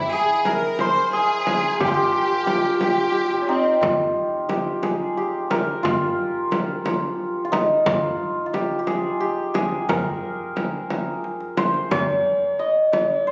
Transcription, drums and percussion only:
0.45 tombak tek medium
0.45 frame drum medium
0.79 tombak tek medium
0.79 frame drum medium
1.30 tombak ka soft
1.47 tombak tek medium
1.47 frame drum medium
1.80 tombak dum medium
1.80 frame drum medium
2.14 tombak ka soft
2.31 tombak ka soft
2.47 tombak tek medium
2.47 frame drum medium
2.81 tombak tek medium
2.81 frame drum medium
3.14 tombak tek medium
3.30 tombak ka medium
3.47 tombak tek medium
3.64 tombak ka medium
3.81 tombak dum medium
3.81 frame drum medium
4.49 tombak tek medium
4.49 frame drum medium
4.83 tombak tek medium
4.83 frame drum medium
5.34 tombak ka soft
5.50 tombak tek medium
5.50 frame drum medium
5.84 tombak dum medium
5.84 frame drum medium
6.51 tombak tek medium
6.51 frame drum medium
6.85 tombak tek medium
6.85 frame drum medium
7.36 tombak ka soft
7.53 tombak tek medium
7.53 frame drum medium
7.86 frame drum loud
7.86 tombak dum medium
8.54 tombak tek medium
8.54 frame drum medium
8.87 tombak tek medium
8.87 frame drum medium
9.39 tombak ka soft
9.55 frame drum medium
9.89 tombak dum medium
9.89 frame drum medium
10.23 tombak ka soft
10.39 tombak ka soft
10.56 tombak tek medium
10.56 frame drum medium
10.90 tombak tek medium
10.90 frame drum medium
11.24 tombak tek medium
11.40 tombak ka medium
11.57 tombak tek medium
11.57 frame drum medium
11.74 tombak ka medium
11.91 tombak dum medium
11.91 frame drum medium
12.92 tombak tek medium
12.92 frame drum medium

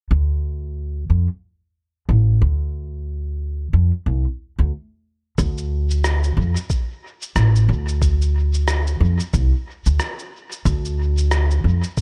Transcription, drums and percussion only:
5.38 kick medium
5.38 cabasa soft
5.58 cabasa soft
5.91 cabasa soft
6.04 cross-stick medium
6.04 cabasa medium
6.24 cabasa soft
6.56 cabasa soft
6.70 kick loud
6.70 cabasa soft
7.22 cabasa soft
7.36 cross-stick medium
7.36 cabasa soft
7.56 cabasa soft
7.89 cabasa soft
8.02 kick loud
8.02 cabasa soft
8.22 cabasa soft
8.54 cabasa soft
8.68 cross-stick medium
8.68 cabasa soft
8.87 cabasa soft
9.20 cabasa soft
9.34 kick loud
9.34 cabasa soft
9.86 cabasa soft
10.00 cross-stick medium
10.00 cabasa soft
10.19 cabasa soft
10.52 cabasa soft
10.65 kick loud
10.65 cabasa soft
10.85 cabasa soft
11.18 cabasa soft
11.31 cross-stick medium
11.31 cabasa soft
11.51 cabasa soft
11.84 cabasa soft
11.97 kick loud
11.97 cabasa medium

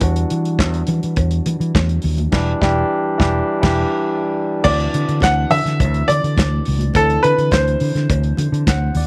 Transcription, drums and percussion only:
0.00 kick loud
0.00 closed hi-hat medium
0.00 cowbell medium
0.00 muted conga medium
0.16 closed hi-hat medium
0.30 closed hi-hat medium
0.45 closed hi-hat soft
0.59 kick medium
0.59 snare loud
0.59 clap medium
0.59 cowbell medium
0.59 high conga medium
0.74 closed hi-hat soft
0.87 closed hi-hat medium
0.87 low conga medium
1.03 closed hi-hat soft
1.16 kick loud
1.16 closed hi-hat medium
1.16 cowbell medium
1.31 closed hi-hat medium
1.46 closed hi-hat medium
1.46 muted conga soft
1.46 low conga medium
1.61 closed hi-hat soft
1.75 kick loud
1.75 snare loud
1.75 clap medium
1.75 cowbell medium
1.75 high conga medium
1.89 closed hi-hat soft
2.02 open hi-hat medium
2.17 closed hi-hat soft
2.17 high conga medium
2.32 kick medium
2.32 snare loud
2.32 crash medium
2.62 kick medium
2.62 snare medium
3.20 kick loud
3.20 snare loud
3.63 kick loud
3.63 snare loud
3.63 crash medium
4.64 kick loud
4.64 crash medium
4.64 cowbell medium
4.64 muted conga medium
4.80 closed hi-hat soft
4.93 closed hi-hat medium
4.93 muted conga soft
5.09 closed hi-hat soft
5.20 kick medium
5.20 snare medium
5.20 closed hi-hat medium
5.20 cowbell medium
5.20 high conga medium
5.25 clap medium
5.50 open hi-hat medium
5.50 low conga loud
5.66 snare soft
5.66 closed hi-hat soft
5.80 kick loud
5.80 closed hi-hat medium
5.80 cowbell medium
5.94 closed hi-hat soft
6.08 closed hi-hat medium
6.08 muted conga soft
6.08 low conga medium
6.24 closed hi-hat soft
6.37 kick loud
6.37 snare loud
6.37 clap medium
6.37 closed hi-hat medium
6.37 cowbell medium
6.37 high conga medium
6.65 open hi-hat medium
6.79 closed hi-hat soft
6.79 high conga medium
6.94 kick loud
6.94 closed hi-hat medium
6.94 cowbell medium
6.94 muted conga medium
7.10 closed hi-hat soft
7.24 closed hi-hat medium
7.39 closed hi-hat soft
7.51 kick medium
7.51 snare loud
7.51 clap medium
7.51 closed hi-hat medium
7.51 cowbell medium
7.51 high conga medium
7.68 closed hi-hat soft
7.80 open hi-hat medium
7.96 snare soft
7.96 closed hi-hat soft
8.10 kick loud
8.10 closed hi-hat medium
8.10 cowbell medium
8.23 closed hi-hat soft
8.37 closed hi-hat medium
8.37 muted conga soft
8.37 low conga medium
8.54 closed hi-hat soft
8.67 kick loud
8.67 snare medium
8.67 clap medium
8.67 closed hi-hat medium
8.67 cowbell medium
8.67 high conga medium
8.95 open hi-hat medium

